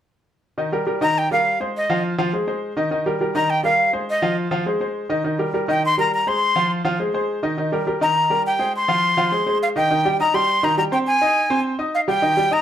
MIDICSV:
0, 0, Header, 1, 3, 480
1, 0, Start_track
1, 0, Key_signature, -3, "minor"
1, 0, Tempo, 291121
1, 951, Time_signature, 4, 2, 24, 8
1, 20803, End_track
2, 0, Start_track
2, 0, Title_t, "Flute"
2, 0, Program_c, 0, 73
2, 1693, Note_on_c, 0, 82, 94
2, 1948, Note_on_c, 0, 79, 94
2, 1973, Note_off_c, 0, 82, 0
2, 2172, Note_off_c, 0, 79, 0
2, 2181, Note_on_c, 0, 77, 95
2, 2617, Note_off_c, 0, 77, 0
2, 2917, Note_on_c, 0, 75, 80
2, 3346, Note_off_c, 0, 75, 0
2, 5535, Note_on_c, 0, 82, 93
2, 5772, Note_on_c, 0, 79, 102
2, 5797, Note_off_c, 0, 82, 0
2, 5996, Note_off_c, 0, 79, 0
2, 6006, Note_on_c, 0, 77, 98
2, 6453, Note_off_c, 0, 77, 0
2, 6759, Note_on_c, 0, 75, 85
2, 7191, Note_off_c, 0, 75, 0
2, 9404, Note_on_c, 0, 79, 82
2, 9612, Note_off_c, 0, 79, 0
2, 9654, Note_on_c, 0, 84, 111
2, 9857, Note_off_c, 0, 84, 0
2, 9885, Note_on_c, 0, 82, 90
2, 10092, Note_off_c, 0, 82, 0
2, 10131, Note_on_c, 0, 82, 90
2, 10359, Note_on_c, 0, 84, 99
2, 10383, Note_off_c, 0, 82, 0
2, 11065, Note_off_c, 0, 84, 0
2, 13235, Note_on_c, 0, 82, 93
2, 13892, Note_off_c, 0, 82, 0
2, 13956, Note_on_c, 0, 79, 84
2, 14390, Note_off_c, 0, 79, 0
2, 14446, Note_on_c, 0, 84, 107
2, 15799, Note_off_c, 0, 84, 0
2, 15872, Note_on_c, 0, 77, 84
2, 15970, Note_off_c, 0, 77, 0
2, 16108, Note_on_c, 0, 79, 92
2, 16765, Note_off_c, 0, 79, 0
2, 16823, Note_on_c, 0, 82, 100
2, 17061, Note_on_c, 0, 84, 103
2, 17085, Note_off_c, 0, 82, 0
2, 17547, Note_on_c, 0, 82, 102
2, 17572, Note_off_c, 0, 84, 0
2, 17768, Note_off_c, 0, 82, 0
2, 17778, Note_on_c, 0, 82, 96
2, 17877, Note_off_c, 0, 82, 0
2, 18015, Note_on_c, 0, 79, 92
2, 18114, Note_off_c, 0, 79, 0
2, 18250, Note_on_c, 0, 80, 101
2, 19134, Note_off_c, 0, 80, 0
2, 19698, Note_on_c, 0, 77, 87
2, 19797, Note_off_c, 0, 77, 0
2, 19945, Note_on_c, 0, 79, 98
2, 20660, Note_on_c, 0, 82, 106
2, 20685, Note_off_c, 0, 79, 0
2, 20803, Note_off_c, 0, 82, 0
2, 20803, End_track
3, 0, Start_track
3, 0, Title_t, "Grand piano"
3, 0, Program_c, 1, 0
3, 949, Note_on_c, 1, 51, 72
3, 955, Note_on_c, 1, 63, 73
3, 963, Note_on_c, 1, 75, 72
3, 1148, Note_off_c, 1, 51, 0
3, 1151, Note_off_c, 1, 63, 0
3, 1156, Note_off_c, 1, 75, 0
3, 1192, Note_on_c, 1, 55, 71
3, 1199, Note_on_c, 1, 67, 70
3, 1202, Note_on_c, 1, 70, 73
3, 1390, Note_off_c, 1, 55, 0
3, 1394, Note_off_c, 1, 67, 0
3, 1395, Note_off_c, 1, 70, 0
3, 1424, Note_on_c, 1, 55, 69
3, 1428, Note_on_c, 1, 67, 67
3, 1437, Note_on_c, 1, 70, 68
3, 1626, Note_off_c, 1, 55, 0
3, 1628, Note_off_c, 1, 67, 0
3, 1633, Note_off_c, 1, 70, 0
3, 1667, Note_on_c, 1, 51, 87
3, 1675, Note_on_c, 1, 63, 89
3, 1680, Note_on_c, 1, 75, 89
3, 2064, Note_off_c, 1, 51, 0
3, 2069, Note_off_c, 1, 63, 0
3, 2072, Note_off_c, 1, 75, 0
3, 2161, Note_on_c, 1, 55, 73
3, 2167, Note_on_c, 1, 67, 65
3, 2174, Note_on_c, 1, 70, 72
3, 2554, Note_off_c, 1, 55, 0
3, 2557, Note_off_c, 1, 67, 0
3, 2561, Note_off_c, 1, 70, 0
3, 2640, Note_on_c, 1, 56, 74
3, 2645, Note_on_c, 1, 68, 69
3, 2651, Note_on_c, 1, 72, 69
3, 3033, Note_off_c, 1, 56, 0
3, 3036, Note_off_c, 1, 68, 0
3, 3040, Note_off_c, 1, 72, 0
3, 3124, Note_on_c, 1, 53, 89
3, 3132, Note_on_c, 1, 65, 86
3, 3136, Note_on_c, 1, 77, 84
3, 3517, Note_off_c, 1, 53, 0
3, 3521, Note_off_c, 1, 65, 0
3, 3523, Note_off_c, 1, 77, 0
3, 3600, Note_on_c, 1, 53, 90
3, 3603, Note_on_c, 1, 65, 89
3, 3611, Note_on_c, 1, 77, 93
3, 3797, Note_off_c, 1, 53, 0
3, 3799, Note_off_c, 1, 65, 0
3, 3803, Note_off_c, 1, 77, 0
3, 3842, Note_on_c, 1, 56, 67
3, 3849, Note_on_c, 1, 68, 73
3, 3853, Note_on_c, 1, 72, 64
3, 4038, Note_off_c, 1, 56, 0
3, 4042, Note_off_c, 1, 68, 0
3, 4045, Note_off_c, 1, 72, 0
3, 4076, Note_on_c, 1, 56, 71
3, 4081, Note_on_c, 1, 68, 72
3, 4086, Note_on_c, 1, 72, 69
3, 4473, Note_off_c, 1, 56, 0
3, 4475, Note_off_c, 1, 68, 0
3, 4478, Note_off_c, 1, 72, 0
3, 4560, Note_on_c, 1, 51, 84
3, 4564, Note_on_c, 1, 63, 82
3, 4572, Note_on_c, 1, 75, 86
3, 4758, Note_off_c, 1, 51, 0
3, 4760, Note_off_c, 1, 63, 0
3, 4765, Note_off_c, 1, 75, 0
3, 4797, Note_on_c, 1, 51, 72
3, 4803, Note_on_c, 1, 63, 78
3, 4808, Note_on_c, 1, 75, 74
3, 4996, Note_off_c, 1, 51, 0
3, 5000, Note_off_c, 1, 63, 0
3, 5003, Note_off_c, 1, 75, 0
3, 5045, Note_on_c, 1, 55, 76
3, 5048, Note_on_c, 1, 67, 74
3, 5059, Note_on_c, 1, 70, 76
3, 5241, Note_off_c, 1, 55, 0
3, 5243, Note_off_c, 1, 67, 0
3, 5250, Note_off_c, 1, 70, 0
3, 5287, Note_on_c, 1, 55, 71
3, 5295, Note_on_c, 1, 67, 69
3, 5300, Note_on_c, 1, 70, 73
3, 5483, Note_off_c, 1, 55, 0
3, 5488, Note_off_c, 1, 67, 0
3, 5491, Note_off_c, 1, 70, 0
3, 5520, Note_on_c, 1, 51, 87
3, 5530, Note_on_c, 1, 63, 92
3, 5534, Note_on_c, 1, 75, 92
3, 5916, Note_off_c, 1, 51, 0
3, 5922, Note_off_c, 1, 63, 0
3, 5924, Note_off_c, 1, 75, 0
3, 5992, Note_on_c, 1, 55, 72
3, 6002, Note_on_c, 1, 67, 69
3, 6005, Note_on_c, 1, 70, 70
3, 6392, Note_off_c, 1, 55, 0
3, 6398, Note_off_c, 1, 67, 0
3, 6399, Note_off_c, 1, 70, 0
3, 6480, Note_on_c, 1, 56, 73
3, 6481, Note_on_c, 1, 68, 70
3, 6487, Note_on_c, 1, 72, 76
3, 6877, Note_off_c, 1, 56, 0
3, 6877, Note_off_c, 1, 68, 0
3, 6881, Note_off_c, 1, 72, 0
3, 6958, Note_on_c, 1, 53, 81
3, 6966, Note_on_c, 1, 65, 90
3, 6968, Note_on_c, 1, 77, 82
3, 7356, Note_off_c, 1, 53, 0
3, 7360, Note_off_c, 1, 65, 0
3, 7362, Note_off_c, 1, 77, 0
3, 7436, Note_on_c, 1, 53, 89
3, 7442, Note_on_c, 1, 65, 85
3, 7450, Note_on_c, 1, 77, 83
3, 7638, Note_off_c, 1, 53, 0
3, 7641, Note_off_c, 1, 65, 0
3, 7646, Note_off_c, 1, 77, 0
3, 7686, Note_on_c, 1, 56, 71
3, 7689, Note_on_c, 1, 68, 73
3, 7697, Note_on_c, 1, 72, 65
3, 7884, Note_off_c, 1, 56, 0
3, 7885, Note_off_c, 1, 68, 0
3, 7890, Note_off_c, 1, 72, 0
3, 7921, Note_on_c, 1, 56, 77
3, 7925, Note_on_c, 1, 68, 70
3, 7932, Note_on_c, 1, 72, 70
3, 8318, Note_off_c, 1, 56, 0
3, 8320, Note_off_c, 1, 68, 0
3, 8325, Note_off_c, 1, 72, 0
3, 8400, Note_on_c, 1, 51, 78
3, 8402, Note_on_c, 1, 63, 78
3, 8408, Note_on_c, 1, 75, 88
3, 8601, Note_off_c, 1, 51, 0
3, 8602, Note_off_c, 1, 63, 0
3, 8605, Note_off_c, 1, 75, 0
3, 8643, Note_on_c, 1, 51, 73
3, 8646, Note_on_c, 1, 63, 67
3, 8650, Note_on_c, 1, 75, 67
3, 8843, Note_off_c, 1, 51, 0
3, 8844, Note_off_c, 1, 63, 0
3, 8846, Note_off_c, 1, 75, 0
3, 8883, Note_on_c, 1, 55, 68
3, 8890, Note_on_c, 1, 67, 74
3, 8895, Note_on_c, 1, 70, 69
3, 9082, Note_off_c, 1, 55, 0
3, 9087, Note_off_c, 1, 67, 0
3, 9090, Note_off_c, 1, 70, 0
3, 9128, Note_on_c, 1, 55, 71
3, 9136, Note_on_c, 1, 67, 68
3, 9141, Note_on_c, 1, 70, 71
3, 9325, Note_off_c, 1, 55, 0
3, 9330, Note_off_c, 1, 67, 0
3, 9333, Note_off_c, 1, 70, 0
3, 9369, Note_on_c, 1, 51, 93
3, 9376, Note_on_c, 1, 63, 83
3, 9381, Note_on_c, 1, 75, 89
3, 9763, Note_off_c, 1, 51, 0
3, 9767, Note_off_c, 1, 63, 0
3, 9770, Note_off_c, 1, 75, 0
3, 9852, Note_on_c, 1, 55, 74
3, 9856, Note_on_c, 1, 67, 66
3, 9867, Note_on_c, 1, 70, 75
3, 10245, Note_off_c, 1, 55, 0
3, 10247, Note_off_c, 1, 67, 0
3, 10254, Note_off_c, 1, 70, 0
3, 10331, Note_on_c, 1, 56, 70
3, 10338, Note_on_c, 1, 68, 76
3, 10341, Note_on_c, 1, 72, 73
3, 10724, Note_off_c, 1, 56, 0
3, 10729, Note_off_c, 1, 68, 0
3, 10731, Note_off_c, 1, 72, 0
3, 10809, Note_on_c, 1, 53, 84
3, 10815, Note_on_c, 1, 65, 83
3, 10819, Note_on_c, 1, 77, 83
3, 11203, Note_off_c, 1, 53, 0
3, 11207, Note_off_c, 1, 65, 0
3, 11209, Note_off_c, 1, 77, 0
3, 11286, Note_on_c, 1, 53, 89
3, 11295, Note_on_c, 1, 65, 91
3, 11301, Note_on_c, 1, 77, 92
3, 11485, Note_off_c, 1, 53, 0
3, 11490, Note_off_c, 1, 65, 0
3, 11493, Note_off_c, 1, 77, 0
3, 11533, Note_on_c, 1, 56, 72
3, 11539, Note_on_c, 1, 68, 68
3, 11541, Note_on_c, 1, 72, 69
3, 11729, Note_off_c, 1, 56, 0
3, 11733, Note_off_c, 1, 68, 0
3, 11733, Note_off_c, 1, 72, 0
3, 11768, Note_on_c, 1, 56, 78
3, 11773, Note_on_c, 1, 68, 72
3, 11781, Note_on_c, 1, 72, 76
3, 12163, Note_off_c, 1, 56, 0
3, 12166, Note_off_c, 1, 68, 0
3, 12170, Note_off_c, 1, 72, 0
3, 12247, Note_on_c, 1, 51, 80
3, 12249, Note_on_c, 1, 63, 86
3, 12256, Note_on_c, 1, 75, 85
3, 12445, Note_off_c, 1, 51, 0
3, 12447, Note_off_c, 1, 63, 0
3, 12450, Note_off_c, 1, 75, 0
3, 12490, Note_on_c, 1, 51, 75
3, 12496, Note_on_c, 1, 63, 76
3, 12500, Note_on_c, 1, 75, 76
3, 12687, Note_off_c, 1, 51, 0
3, 12691, Note_off_c, 1, 63, 0
3, 12693, Note_off_c, 1, 75, 0
3, 12731, Note_on_c, 1, 55, 77
3, 12740, Note_on_c, 1, 67, 76
3, 12742, Note_on_c, 1, 70, 77
3, 12927, Note_off_c, 1, 55, 0
3, 12933, Note_off_c, 1, 67, 0
3, 12934, Note_off_c, 1, 70, 0
3, 12970, Note_on_c, 1, 55, 67
3, 12978, Note_on_c, 1, 67, 75
3, 12981, Note_on_c, 1, 70, 74
3, 13167, Note_off_c, 1, 55, 0
3, 13171, Note_off_c, 1, 67, 0
3, 13173, Note_off_c, 1, 70, 0
3, 13209, Note_on_c, 1, 51, 87
3, 13214, Note_on_c, 1, 63, 90
3, 13221, Note_on_c, 1, 75, 92
3, 13603, Note_off_c, 1, 51, 0
3, 13606, Note_off_c, 1, 63, 0
3, 13610, Note_off_c, 1, 75, 0
3, 13686, Note_on_c, 1, 55, 74
3, 13692, Note_on_c, 1, 67, 73
3, 13692, Note_on_c, 1, 70, 74
3, 14081, Note_off_c, 1, 55, 0
3, 14084, Note_off_c, 1, 67, 0
3, 14084, Note_off_c, 1, 70, 0
3, 14163, Note_on_c, 1, 56, 73
3, 14168, Note_on_c, 1, 68, 79
3, 14173, Note_on_c, 1, 72, 69
3, 14559, Note_off_c, 1, 56, 0
3, 14561, Note_off_c, 1, 68, 0
3, 14565, Note_off_c, 1, 72, 0
3, 14644, Note_on_c, 1, 53, 86
3, 14649, Note_on_c, 1, 65, 86
3, 14654, Note_on_c, 1, 77, 85
3, 15039, Note_off_c, 1, 53, 0
3, 15042, Note_off_c, 1, 65, 0
3, 15045, Note_off_c, 1, 77, 0
3, 15120, Note_on_c, 1, 53, 87
3, 15126, Note_on_c, 1, 65, 88
3, 15134, Note_on_c, 1, 77, 94
3, 15319, Note_off_c, 1, 53, 0
3, 15323, Note_off_c, 1, 65, 0
3, 15328, Note_off_c, 1, 77, 0
3, 15363, Note_on_c, 1, 56, 66
3, 15366, Note_on_c, 1, 68, 76
3, 15374, Note_on_c, 1, 72, 69
3, 15561, Note_off_c, 1, 56, 0
3, 15563, Note_off_c, 1, 68, 0
3, 15568, Note_off_c, 1, 72, 0
3, 15604, Note_on_c, 1, 56, 76
3, 15607, Note_on_c, 1, 68, 78
3, 15613, Note_on_c, 1, 72, 74
3, 15998, Note_off_c, 1, 56, 0
3, 16000, Note_off_c, 1, 68, 0
3, 16003, Note_off_c, 1, 72, 0
3, 16089, Note_on_c, 1, 51, 86
3, 16091, Note_on_c, 1, 63, 85
3, 16102, Note_on_c, 1, 75, 83
3, 16284, Note_off_c, 1, 51, 0
3, 16285, Note_off_c, 1, 63, 0
3, 16291, Note_off_c, 1, 75, 0
3, 16332, Note_on_c, 1, 51, 78
3, 16336, Note_on_c, 1, 63, 82
3, 16340, Note_on_c, 1, 75, 81
3, 16525, Note_off_c, 1, 51, 0
3, 16528, Note_off_c, 1, 63, 0
3, 16530, Note_off_c, 1, 75, 0
3, 16573, Note_on_c, 1, 55, 78
3, 16574, Note_on_c, 1, 67, 78
3, 16580, Note_on_c, 1, 79, 84
3, 16766, Note_off_c, 1, 55, 0
3, 16766, Note_off_c, 1, 67, 0
3, 16770, Note_off_c, 1, 79, 0
3, 16813, Note_on_c, 1, 63, 77
3, 16822, Note_on_c, 1, 75, 72
3, 16823, Note_on_c, 1, 87, 82
3, 17005, Note_off_c, 1, 63, 0
3, 17010, Note_off_c, 1, 75, 0
3, 17011, Note_off_c, 1, 87, 0
3, 17047, Note_on_c, 1, 55, 87
3, 17054, Note_on_c, 1, 67, 83
3, 17056, Note_on_c, 1, 79, 85
3, 17437, Note_off_c, 1, 55, 0
3, 17441, Note_off_c, 1, 67, 0
3, 17442, Note_off_c, 1, 79, 0
3, 17527, Note_on_c, 1, 51, 90
3, 17531, Note_on_c, 1, 63, 86
3, 17532, Note_on_c, 1, 75, 89
3, 17721, Note_off_c, 1, 51, 0
3, 17723, Note_off_c, 1, 63, 0
3, 17724, Note_off_c, 1, 75, 0
3, 17765, Note_on_c, 1, 55, 76
3, 17773, Note_on_c, 1, 67, 74
3, 17777, Note_on_c, 1, 79, 74
3, 17959, Note_off_c, 1, 55, 0
3, 17963, Note_off_c, 1, 67, 0
3, 17966, Note_off_c, 1, 79, 0
3, 18000, Note_on_c, 1, 60, 80
3, 18005, Note_on_c, 1, 72, 80
3, 18013, Note_on_c, 1, 84, 83
3, 18392, Note_off_c, 1, 60, 0
3, 18395, Note_off_c, 1, 72, 0
3, 18400, Note_off_c, 1, 84, 0
3, 18491, Note_on_c, 1, 63, 86
3, 18493, Note_on_c, 1, 75, 80
3, 18499, Note_on_c, 1, 87, 80
3, 18877, Note_off_c, 1, 63, 0
3, 18879, Note_off_c, 1, 75, 0
3, 18882, Note_off_c, 1, 87, 0
3, 18963, Note_on_c, 1, 60, 92
3, 18964, Note_on_c, 1, 72, 86
3, 18972, Note_on_c, 1, 84, 86
3, 19352, Note_off_c, 1, 60, 0
3, 19352, Note_off_c, 1, 72, 0
3, 19357, Note_off_c, 1, 84, 0
3, 19434, Note_on_c, 1, 63, 84
3, 19437, Note_on_c, 1, 75, 81
3, 19441, Note_on_c, 1, 87, 77
3, 19825, Note_off_c, 1, 63, 0
3, 19827, Note_off_c, 1, 75, 0
3, 19830, Note_off_c, 1, 87, 0
3, 19912, Note_on_c, 1, 55, 87
3, 19919, Note_on_c, 1, 67, 83
3, 19927, Note_on_c, 1, 79, 77
3, 20107, Note_off_c, 1, 55, 0
3, 20112, Note_off_c, 1, 67, 0
3, 20116, Note_off_c, 1, 79, 0
3, 20150, Note_on_c, 1, 51, 78
3, 20153, Note_on_c, 1, 63, 79
3, 20159, Note_on_c, 1, 75, 89
3, 20346, Note_off_c, 1, 51, 0
3, 20347, Note_off_c, 1, 63, 0
3, 20351, Note_off_c, 1, 75, 0
3, 20394, Note_on_c, 1, 55, 79
3, 20398, Note_on_c, 1, 67, 84
3, 20403, Note_on_c, 1, 79, 84
3, 20588, Note_off_c, 1, 55, 0
3, 20590, Note_off_c, 1, 67, 0
3, 20593, Note_off_c, 1, 79, 0
3, 20627, Note_on_c, 1, 63, 84
3, 20637, Note_on_c, 1, 75, 73
3, 20640, Note_on_c, 1, 87, 79
3, 20803, Note_off_c, 1, 63, 0
3, 20803, Note_off_c, 1, 75, 0
3, 20803, Note_off_c, 1, 87, 0
3, 20803, End_track
0, 0, End_of_file